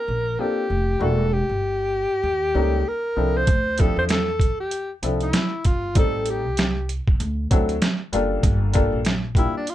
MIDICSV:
0, 0, Header, 1, 5, 480
1, 0, Start_track
1, 0, Key_signature, -1, "minor"
1, 0, Tempo, 618557
1, 783, Time_signature, 4, 2, 24, 8
1, 7565, End_track
2, 0, Start_track
2, 0, Title_t, "Alto saxophone"
2, 0, Program_c, 0, 65
2, 0, Note_on_c, 0, 70, 97
2, 313, Note_on_c, 0, 67, 93
2, 324, Note_off_c, 0, 70, 0
2, 795, Note_on_c, 0, 69, 98
2, 807, Note_off_c, 0, 67, 0
2, 1031, Note_on_c, 0, 67, 111
2, 1043, Note_off_c, 0, 69, 0
2, 2236, Note_on_c, 0, 70, 101
2, 2248, Note_off_c, 0, 67, 0
2, 2616, Note_on_c, 0, 72, 103
2, 2628, Note_off_c, 0, 70, 0
2, 2951, Note_on_c, 0, 69, 91
2, 2963, Note_off_c, 0, 72, 0
2, 3089, Note_off_c, 0, 69, 0
2, 3093, Note_on_c, 0, 72, 96
2, 3135, Note_off_c, 0, 72, 0
2, 3187, Note_on_c, 0, 69, 100
2, 3542, Note_off_c, 0, 69, 0
2, 3571, Note_on_c, 0, 67, 90
2, 3815, Note_off_c, 0, 67, 0
2, 4058, Note_on_c, 0, 64, 83
2, 4392, Note_on_c, 0, 65, 91
2, 4404, Note_off_c, 0, 64, 0
2, 4627, Note_off_c, 0, 65, 0
2, 4647, Note_on_c, 0, 69, 101
2, 4889, Note_on_c, 0, 67, 86
2, 4901, Note_off_c, 0, 69, 0
2, 5356, Note_off_c, 0, 67, 0
2, 7282, Note_on_c, 0, 64, 85
2, 7407, Note_off_c, 0, 64, 0
2, 7427, Note_on_c, 0, 62, 79
2, 7524, Note_on_c, 0, 65, 91
2, 7536, Note_off_c, 0, 62, 0
2, 7565, Note_off_c, 0, 65, 0
2, 7565, End_track
3, 0, Start_track
3, 0, Title_t, "Upright piano"
3, 0, Program_c, 1, 0
3, 299, Note_on_c, 1, 58, 59
3, 302, Note_on_c, 1, 60, 54
3, 304, Note_on_c, 1, 62, 53
3, 306, Note_on_c, 1, 65, 52
3, 314, Note_on_c, 1, 69, 67
3, 483, Note_off_c, 1, 58, 0
3, 485, Note_off_c, 1, 60, 0
3, 485, Note_off_c, 1, 62, 0
3, 487, Note_off_c, 1, 65, 0
3, 490, Note_off_c, 1, 69, 0
3, 771, Note_on_c, 1, 55, 63
3, 778, Note_on_c, 1, 58, 59
3, 781, Note_on_c, 1, 62, 58
3, 783, Note_on_c, 1, 66, 76
3, 785, Note_on_c, 1, 64, 60
3, 959, Note_off_c, 1, 55, 0
3, 963, Note_off_c, 1, 58, 0
3, 964, Note_off_c, 1, 62, 0
3, 965, Note_off_c, 1, 66, 0
3, 966, Note_off_c, 1, 64, 0
3, 1974, Note_on_c, 1, 55, 70
3, 1977, Note_on_c, 1, 58, 62
3, 1980, Note_on_c, 1, 61, 68
3, 1985, Note_on_c, 1, 63, 66
3, 1986, Note_on_c, 1, 69, 74
3, 2161, Note_off_c, 1, 55, 0
3, 2162, Note_off_c, 1, 58, 0
3, 2163, Note_off_c, 1, 61, 0
3, 2166, Note_off_c, 1, 63, 0
3, 2166, Note_off_c, 1, 69, 0
3, 2454, Note_on_c, 1, 53, 63
3, 2457, Note_on_c, 1, 60, 63
3, 2461, Note_on_c, 1, 62, 60
3, 2464, Note_on_c, 1, 64, 59
3, 2468, Note_on_c, 1, 69, 70
3, 2641, Note_off_c, 1, 53, 0
3, 2642, Note_off_c, 1, 60, 0
3, 2644, Note_off_c, 1, 62, 0
3, 2646, Note_off_c, 1, 64, 0
3, 2648, Note_off_c, 1, 69, 0
3, 2937, Note_on_c, 1, 53, 69
3, 2940, Note_on_c, 1, 60, 60
3, 2944, Note_on_c, 1, 62, 58
3, 2947, Note_on_c, 1, 64, 61
3, 2951, Note_on_c, 1, 67, 59
3, 2998, Note_on_c, 1, 69, 77
3, 3007, Note_off_c, 1, 67, 0
3, 3295, Note_off_c, 1, 53, 0
3, 3296, Note_off_c, 1, 60, 0
3, 3298, Note_off_c, 1, 62, 0
3, 3300, Note_off_c, 1, 64, 0
3, 3325, Note_off_c, 1, 69, 0
3, 3900, Note_on_c, 1, 53, 61
3, 3905, Note_on_c, 1, 60, 52
3, 3906, Note_on_c, 1, 62, 52
3, 3908, Note_on_c, 1, 64, 57
3, 3912, Note_on_c, 1, 69, 67
3, 4084, Note_off_c, 1, 53, 0
3, 4086, Note_off_c, 1, 60, 0
3, 4087, Note_off_c, 1, 62, 0
3, 4088, Note_off_c, 1, 64, 0
3, 4090, Note_off_c, 1, 69, 0
3, 4616, Note_on_c, 1, 55, 67
3, 4621, Note_on_c, 1, 57, 63
3, 4625, Note_on_c, 1, 60, 60
3, 4628, Note_on_c, 1, 63, 62
3, 4631, Note_on_c, 1, 69, 76
3, 4974, Note_off_c, 1, 55, 0
3, 4977, Note_off_c, 1, 57, 0
3, 4979, Note_off_c, 1, 60, 0
3, 4980, Note_off_c, 1, 63, 0
3, 4982, Note_off_c, 1, 69, 0
3, 5825, Note_on_c, 1, 54, 72
3, 5829, Note_on_c, 1, 60, 65
3, 5835, Note_on_c, 1, 62, 67
3, 5837, Note_on_c, 1, 64, 65
3, 5842, Note_on_c, 1, 69, 83
3, 6006, Note_off_c, 1, 54, 0
3, 6008, Note_off_c, 1, 60, 0
3, 6011, Note_off_c, 1, 62, 0
3, 6012, Note_off_c, 1, 64, 0
3, 6014, Note_off_c, 1, 69, 0
3, 6305, Note_on_c, 1, 55, 82
3, 6311, Note_on_c, 1, 58, 76
3, 6311, Note_on_c, 1, 62, 69
3, 6315, Note_on_c, 1, 65, 72
3, 6318, Note_on_c, 1, 69, 87
3, 6766, Note_off_c, 1, 55, 0
3, 6771, Note_off_c, 1, 58, 0
3, 6773, Note_off_c, 1, 62, 0
3, 6777, Note_off_c, 1, 65, 0
3, 6777, Note_on_c, 1, 55, 85
3, 6780, Note_off_c, 1, 69, 0
3, 6783, Note_on_c, 1, 58, 84
3, 6784, Note_on_c, 1, 62, 77
3, 6789, Note_on_c, 1, 65, 78
3, 6792, Note_on_c, 1, 69, 98
3, 6962, Note_off_c, 1, 55, 0
3, 6965, Note_off_c, 1, 58, 0
3, 6966, Note_off_c, 1, 62, 0
3, 6968, Note_off_c, 1, 65, 0
3, 6969, Note_off_c, 1, 69, 0
3, 7259, Note_on_c, 1, 55, 59
3, 7259, Note_on_c, 1, 58, 57
3, 7260, Note_on_c, 1, 62, 56
3, 7266, Note_on_c, 1, 65, 56
3, 7268, Note_on_c, 1, 67, 62
3, 7443, Note_off_c, 1, 55, 0
3, 7443, Note_off_c, 1, 58, 0
3, 7444, Note_off_c, 1, 62, 0
3, 7447, Note_off_c, 1, 65, 0
3, 7448, Note_off_c, 1, 67, 0
3, 7565, End_track
4, 0, Start_track
4, 0, Title_t, "Upright bass"
4, 0, Program_c, 2, 32
4, 62, Note_on_c, 2, 34, 87
4, 269, Note_off_c, 2, 34, 0
4, 544, Note_on_c, 2, 29, 83
4, 750, Note_off_c, 2, 29, 0
4, 780, Note_on_c, 2, 28, 100
4, 1112, Note_off_c, 2, 28, 0
4, 1159, Note_on_c, 2, 31, 81
4, 1576, Note_off_c, 2, 31, 0
4, 1733, Note_on_c, 2, 39, 90
4, 1944, Note_off_c, 2, 39, 0
4, 1977, Note_on_c, 2, 37, 87
4, 2186, Note_off_c, 2, 37, 0
4, 2456, Note_on_c, 2, 36, 76
4, 2666, Note_off_c, 2, 36, 0
4, 2697, Note_on_c, 2, 38, 101
4, 3030, Note_off_c, 2, 38, 0
4, 3080, Note_on_c, 2, 40, 80
4, 3496, Note_off_c, 2, 40, 0
4, 3900, Note_on_c, 2, 36, 97
4, 4108, Note_off_c, 2, 36, 0
4, 4385, Note_on_c, 2, 31, 79
4, 4623, Note_off_c, 2, 31, 0
4, 4623, Note_on_c, 2, 33, 100
4, 5012, Note_off_c, 2, 33, 0
4, 5012, Note_on_c, 2, 36, 79
4, 5423, Note_off_c, 2, 36, 0
4, 5587, Note_on_c, 2, 38, 98
4, 5792, Note_off_c, 2, 38, 0
4, 5832, Note_on_c, 2, 38, 89
4, 6035, Note_off_c, 2, 38, 0
4, 6306, Note_on_c, 2, 30, 87
4, 6511, Note_off_c, 2, 30, 0
4, 6545, Note_on_c, 2, 31, 110
4, 6875, Note_off_c, 2, 31, 0
4, 6924, Note_on_c, 2, 34, 70
4, 7339, Note_off_c, 2, 34, 0
4, 7565, End_track
5, 0, Start_track
5, 0, Title_t, "Drums"
5, 2694, Note_on_c, 9, 42, 82
5, 2696, Note_on_c, 9, 36, 102
5, 2772, Note_off_c, 9, 42, 0
5, 2773, Note_off_c, 9, 36, 0
5, 2930, Note_on_c, 9, 42, 74
5, 2947, Note_on_c, 9, 36, 77
5, 3008, Note_off_c, 9, 42, 0
5, 3025, Note_off_c, 9, 36, 0
5, 3172, Note_on_c, 9, 42, 73
5, 3185, Note_on_c, 9, 38, 99
5, 3250, Note_off_c, 9, 42, 0
5, 3263, Note_off_c, 9, 38, 0
5, 3411, Note_on_c, 9, 36, 74
5, 3423, Note_on_c, 9, 42, 62
5, 3488, Note_off_c, 9, 36, 0
5, 3501, Note_off_c, 9, 42, 0
5, 3658, Note_on_c, 9, 42, 72
5, 3735, Note_off_c, 9, 42, 0
5, 3902, Note_on_c, 9, 42, 75
5, 3980, Note_off_c, 9, 42, 0
5, 4039, Note_on_c, 9, 42, 45
5, 4117, Note_off_c, 9, 42, 0
5, 4138, Note_on_c, 9, 42, 94
5, 4141, Note_on_c, 9, 38, 102
5, 4216, Note_off_c, 9, 42, 0
5, 4219, Note_off_c, 9, 38, 0
5, 4381, Note_on_c, 9, 42, 71
5, 4385, Note_on_c, 9, 36, 74
5, 4458, Note_off_c, 9, 42, 0
5, 4463, Note_off_c, 9, 36, 0
5, 4619, Note_on_c, 9, 42, 86
5, 4622, Note_on_c, 9, 36, 105
5, 4697, Note_off_c, 9, 42, 0
5, 4699, Note_off_c, 9, 36, 0
5, 4855, Note_on_c, 9, 42, 81
5, 4932, Note_off_c, 9, 42, 0
5, 5100, Note_on_c, 9, 42, 74
5, 5113, Note_on_c, 9, 38, 95
5, 5178, Note_off_c, 9, 42, 0
5, 5190, Note_off_c, 9, 38, 0
5, 5348, Note_on_c, 9, 42, 61
5, 5426, Note_off_c, 9, 42, 0
5, 5490, Note_on_c, 9, 36, 84
5, 5568, Note_off_c, 9, 36, 0
5, 5588, Note_on_c, 9, 42, 71
5, 5666, Note_off_c, 9, 42, 0
5, 5827, Note_on_c, 9, 42, 69
5, 5829, Note_on_c, 9, 36, 89
5, 5904, Note_off_c, 9, 42, 0
5, 5907, Note_off_c, 9, 36, 0
5, 5968, Note_on_c, 9, 42, 44
5, 6045, Note_off_c, 9, 42, 0
5, 6066, Note_on_c, 9, 42, 91
5, 6069, Note_on_c, 9, 38, 101
5, 6144, Note_off_c, 9, 42, 0
5, 6146, Note_off_c, 9, 38, 0
5, 6308, Note_on_c, 9, 42, 72
5, 6386, Note_off_c, 9, 42, 0
5, 6544, Note_on_c, 9, 36, 104
5, 6545, Note_on_c, 9, 42, 90
5, 6622, Note_off_c, 9, 36, 0
5, 6623, Note_off_c, 9, 42, 0
5, 6779, Note_on_c, 9, 42, 76
5, 6793, Note_on_c, 9, 36, 79
5, 6856, Note_off_c, 9, 42, 0
5, 6871, Note_off_c, 9, 36, 0
5, 7021, Note_on_c, 9, 42, 69
5, 7034, Note_on_c, 9, 38, 94
5, 7099, Note_off_c, 9, 42, 0
5, 7111, Note_off_c, 9, 38, 0
5, 7255, Note_on_c, 9, 36, 81
5, 7268, Note_on_c, 9, 42, 60
5, 7333, Note_off_c, 9, 36, 0
5, 7346, Note_off_c, 9, 42, 0
5, 7505, Note_on_c, 9, 42, 68
5, 7565, Note_off_c, 9, 42, 0
5, 7565, End_track
0, 0, End_of_file